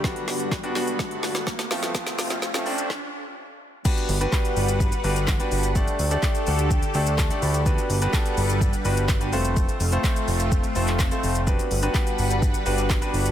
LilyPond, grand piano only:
\new Staff \with { instrumentName = "Grand piano" } { \time 4/4 \key g \major \tempo 4 = 126 << { r1 | r1 | r1 | r4. fis''8 g''8 g''8 a''8 b''8 |
r1 | r1 | r1 | } \\ { <g b d' fis'>4 r16 <g b d' fis'>16 <g b d' fis'>4. r8 <f a c' f'>8~ | <f a c' f'>4 r16 <f a c' f'>16 <f a c' d'>8 r2 | <b d' fis' g' b'>8 r16 <b d' fis' g' b'>16 <b d' fis' g' b'>4~ <b d' fis' g' b'>16 r16 <b d' fis' g' b'>8 r16 <b d' fis' g' b'>8 r16 | <a d' g' a' d''>8 r16 <a d' g' a' d''>16 a4~ a16 r16 <a d' g' a' d''>8 r16 <a d' g' a' d''>8 r16 |
<b d' fis' g' b'>8 r16 <b d' fis' g' b'>16 <d' a'>4~ <d' a'>16 r16 <b d' fis' g' b'>8 r16 <b d' fis' g' b'>16 <a c' f' a' c''>8~ | <a c' f' a' c''>8 r16 <a c' f' a' c''>16 <a a'>4~ <a a'>16 r16 <a c' f' a' c''>8 r16 <a c' f' a' c''>8 r16 | <b d' fis' g' b'>8 r16 <b d' fis' g' b'>16 <b d' fis' g' b'>4~ <b d' fis' g' b'>16 r16 <b d' fis' g' b'>8 r16 <b d' fis' g' b'>8 r16 | } >> }